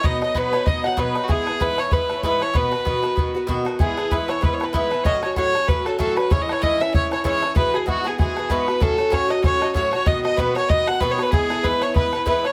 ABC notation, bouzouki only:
X:1
M:4/4
L:1/8
Q:"Swing" 1/4=191
K:Bmix
V:1 name="Bouzouki"
[B,,F,B,D] [F,B,D] [B,,F,B,D] [F,B,D] [B,,F,B,D] [F,B,D] [B,,F,B,D] [F,B,D] | [G,,E,B,E] [E,B,E] [G,,E,B,E] [E,B,E] [G,,E,B,E] [E,B,E] [G,,E,B,E] [E,B,E] | [B,,D,B,F] [D,B,F] [B,,D,B,F] [D,B,F] [B,,D,B,F] [D,B,F] [B,,D,B,F] [D,B,F] | [G,,E,B,E] [E,B,E] [G,,E,B,E] [E,B,E] [G,,E,B,E] [E,B,E] [G,,E,B,E] [E,B,E] |
[A,,F,CF] [F,CF] [A,,F,CF] [F,CF] [A,,F,CF] [F,CF] [A,,F,CF] [F,CF] | [G,,E,CE] [E,CE] [G,,E,CE] [E,CE] [G,,E,CE] [E,CE] [G,,E,CE] [E,CE] | [G,,E,B,F] [E,B,F] [G,,E,B,F] [E,B,F] [G,,E,B,F] [E,B,F] [G,,E,B,F] [E,B,F] | [A,,F,CF] [F,CF] [A,,F,CF] [F,CF] [A,,F,CF] [F,CF] [A,,F,CF] [F,CF] |
[B,,D,B,F] [D,B,F] [B,,D,B,F] [D,B,F] [B,,D,B,F] [D,B,F] [B,,D,B,F] [D,B,F] | [G,,E,B,E] [E,B,E] [G,,E,B,E] [E,B,E] [G,,E,B,E] [E,B,E] [G,,E,B,E] [E,B,E] |]